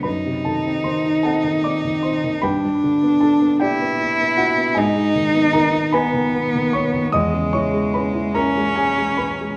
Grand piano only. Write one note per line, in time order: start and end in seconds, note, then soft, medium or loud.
0.03 2.39 F#2 soft
0.03 0.43 B4 soft
0.03 0.45 B5 medium
0.26 0.58 C3 soft
0.45 0.78 D#3 soft
0.45 0.83 A4 soft
0.45 0.85 A5 medium
0.66 0.97 C4 soft
0.84 1.17 D#3 soft
0.84 1.22 C5 soft
0.84 1.24 C6 medium
1.06 1.37 D#4 soft
1.23 1.56 C4 soft
1.23 1.61 A4 soft
1.23 1.62 F#5 soft
1.23 1.63 A5 medium
1.44 1.76 D#3 soft
1.64 1.97 C4 soft
1.64 2.01 D5 soft
1.64 2.04 D6 medium
1.85 2.16 D#3 soft
2.03 2.36 C4 soft
2.03 2.41 C5 soft
2.03 2.43 C6 soft
2.24 2.44 D#3 soft
2.42 4.74 G2 soft
2.42 3.18 B4 medium
2.42 3.18 G5 medium
2.42 3.21 B5 medium
2.65 2.95 G3 soft
2.84 3.15 D3 soft
3.03 3.34 B3 soft
3.21 3.54 D4 soft
3.21 3.59 A4 soft
3.21 3.60 A5 medium
3.42 3.73 B3 soft
3.60 3.93 D4 soft
3.60 4.35 G4 soft
3.60 4.35 D5 medium
3.60 4.38 G5 medium
3.81 4.12 B3 soft
4.01 4.32 D4 soft
4.20 4.51 B3 soft
4.37 4.70 D4 soft
4.37 4.75 F#4 soft
4.37 4.77 F#5 medium
4.57 4.77 B3 soft
4.75 7.09 G#2 medium
4.75 5.50 G#4 soft
4.75 5.50 D#5 soft
4.75 5.54 G#5 medium
4.96 5.28 G#3 soft
5.15 5.47 D#3 soft
5.34 5.66 B3 soft
5.53 5.86 D#3 soft
5.53 5.91 A#4 medium
5.53 5.94 A#5 medium
5.74 6.06 D#4 soft
5.92 6.26 B3 soft
5.92 6.70 B4 medium
5.92 6.70 G#5 medium
5.92 6.73 B5 medium
6.14 6.46 D#3 soft
6.34 6.66 B3 soft
6.56 6.87 D#3 soft
6.73 7.06 B3 soft
6.73 7.11 C#5 medium
6.73 7.13 C#6 medium
6.94 7.14 D#3 soft
7.12 9.57 E2 medium
7.12 7.51 D#5 medium
7.12 7.53 D#6 medium
7.34 7.66 C#3 soft
7.53 7.87 E3 soft
7.53 7.91 C#5 medium
7.53 7.94 C#6 medium
7.74 8.06 G#3 soft
7.94 8.28 C#4 soft
7.94 8.33 B4 medium
7.94 8.35 B5 medium
8.15 8.48 E4 soft
8.34 8.69 C#4 soft
8.34 8.74 A#4 medium
8.34 8.77 A#5 medium
8.57 8.91 G#3 soft
8.76 9.12 C#4 soft
8.76 9.17 G#4 soft
8.76 9.19 G#5 medium
8.98 9.33 G#3 soft
9.17 9.54 C#4 soft
9.17 9.57 B4 soft
9.17 9.57 B5 medium
9.41 9.57 G#3 soft